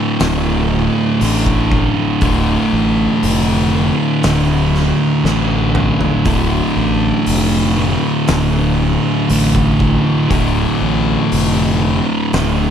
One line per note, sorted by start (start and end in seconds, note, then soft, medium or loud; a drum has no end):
0.00 1.20 D2 medium
0.00 2.19 D2 medium
0.00 1.18 A2 medium
0.00 2.19 A2 medium
0.00 1.23 D3 medium
0.00 2.20 D3 medium
0.20 0.87 D1 medium
0.20 snare loud
0.20 open hi-hat medium
1.20 1.88 A1 medium
1.20 2.21 D2 medium
1.20 2.19 A2 medium
1.20 2.23 D3 medium
1.20 open hi-hat medium
1.46 kick medium
1.72 kick medium
2.21 2.55 D1 medium
2.21 3.75 D2 medium
2.21 3.71 A2 medium
2.21 3.72 D3 loud
2.21 kick loud
2.21 open hi-hat medium
2.72 3.06 A1 medium
3.23 3.90 F1 medium
3.23 open hi-hat medium
3.72 5.24 D2 medium
3.72 5.22 A2 medium
3.72 5.26 D3 medium
4.23 4.91 D1 medium
4.23 snare loud
4.23 open hi-hat medium
4.74 snare soft
5.24 5.91 A1 medium
5.24 6.24 D2 medium
5.24 6.23 A2 medium
5.24 6.27 D3 medium
5.24 snare medium
5.75 mid tom medium
6.01 floor tom medium
6.25 6.59 D1 medium
6.25 7.80 D2 medium
6.25 7.75 A2 loud
6.25 7.77 D3 loud
6.25 kick loud
6.25 open hi-hat medium
6.76 7.10 A1 medium
7.26 7.94 F1 medium
7.26 open hi-hat medium
7.77 9.28 D2 medium
7.77 9.27 A2 medium
7.77 9.31 D3 medium
8.28 8.95 D1 medium
8.28 snare loud
8.28 open hi-hat medium
9.29 9.97 A1 medium
9.29 10.30 D2 medium
9.29 10.28 A2 medium
9.29 10.33 D3 medium
9.29 open hi-hat medium
9.55 kick medium
9.80 kick medium
10.30 10.64 D1 medium
10.30 11.84 D2 medium
10.30 11.80 A2 loud
10.30 11.81 D3 medium
10.30 kick loud
10.30 open hi-hat medium
10.81 11.15 A1 medium
11.32 11.99 F1 medium
11.32 open hi-hat medium
11.82 12.70 D2 medium
11.82 12.70 A2 medium
11.82 12.70 D3 medium
12.33 12.70 D1 medium
12.33 snare loud
12.33 open hi-hat medium